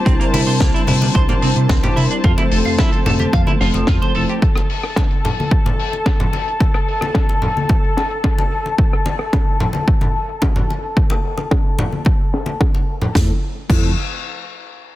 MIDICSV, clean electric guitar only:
0, 0, Header, 1, 2, 480
1, 0, Start_track
1, 0, Key_signature, -1, "major"
1, 0, Tempo, 545455
1, 54, Time_signature, 4, 2, 24, 8
1, 13161, End_track
2, 0, Start_track
2, 0, Title_t, "Clean electric guitar"
2, 0, Program_c, 0, 27
2, 46, Note_on_c, 0, 60, 100
2, 111, Note_off_c, 0, 60, 0
2, 173, Note_on_c, 0, 58, 101
2, 210, Note_off_c, 0, 58, 0
2, 294, Note_on_c, 0, 64, 77
2, 355, Note_off_c, 0, 64, 0
2, 413, Note_on_c, 0, 72, 77
2, 450, Note_off_c, 0, 72, 0
2, 531, Note_on_c, 0, 58, 80
2, 624, Note_off_c, 0, 58, 0
2, 654, Note_on_c, 0, 64, 75
2, 714, Note_off_c, 0, 64, 0
2, 773, Note_on_c, 0, 64, 70
2, 834, Note_off_c, 0, 64, 0
2, 894, Note_on_c, 0, 62, 74
2, 930, Note_off_c, 0, 62, 0
2, 1011, Note_on_c, 0, 72, 101
2, 1073, Note_off_c, 0, 72, 0
2, 1134, Note_on_c, 0, 58, 101
2, 1170, Note_off_c, 0, 58, 0
2, 1254, Note_on_c, 0, 60, 97
2, 1315, Note_off_c, 0, 60, 0
2, 1374, Note_on_c, 0, 48, 73
2, 1463, Note_off_c, 0, 48, 0
2, 1489, Note_on_c, 0, 60, 80
2, 1552, Note_off_c, 0, 60, 0
2, 1612, Note_on_c, 0, 67, 76
2, 1702, Note_off_c, 0, 67, 0
2, 1728, Note_on_c, 0, 64, 96
2, 1792, Note_off_c, 0, 64, 0
2, 1853, Note_on_c, 0, 62, 75
2, 1890, Note_off_c, 0, 62, 0
2, 1971, Note_on_c, 0, 65, 98
2, 2033, Note_off_c, 0, 65, 0
2, 2093, Note_on_c, 0, 64, 94
2, 2130, Note_off_c, 0, 64, 0
2, 2214, Note_on_c, 0, 69, 75
2, 2275, Note_off_c, 0, 69, 0
2, 2336, Note_on_c, 0, 77, 72
2, 2371, Note_off_c, 0, 77, 0
2, 2451, Note_on_c, 0, 64, 78
2, 2544, Note_off_c, 0, 64, 0
2, 2572, Note_on_c, 0, 69, 73
2, 2633, Note_off_c, 0, 69, 0
2, 2694, Note_on_c, 0, 69, 74
2, 2755, Note_off_c, 0, 69, 0
2, 2814, Note_on_c, 0, 67, 72
2, 2850, Note_off_c, 0, 67, 0
2, 2936, Note_on_c, 0, 77, 104
2, 2996, Note_off_c, 0, 77, 0
2, 3055, Note_on_c, 0, 64, 96
2, 3091, Note_off_c, 0, 64, 0
2, 3174, Note_on_c, 0, 65, 95
2, 3235, Note_off_c, 0, 65, 0
2, 3297, Note_on_c, 0, 53, 71
2, 3385, Note_off_c, 0, 53, 0
2, 3415, Note_on_c, 0, 65, 82
2, 3475, Note_off_c, 0, 65, 0
2, 3537, Note_on_c, 0, 72, 70
2, 3625, Note_off_c, 0, 72, 0
2, 3654, Note_on_c, 0, 69, 95
2, 3715, Note_off_c, 0, 69, 0
2, 3780, Note_on_c, 0, 67, 75
2, 3813, Note_off_c, 0, 67, 0
2, 13161, End_track
0, 0, End_of_file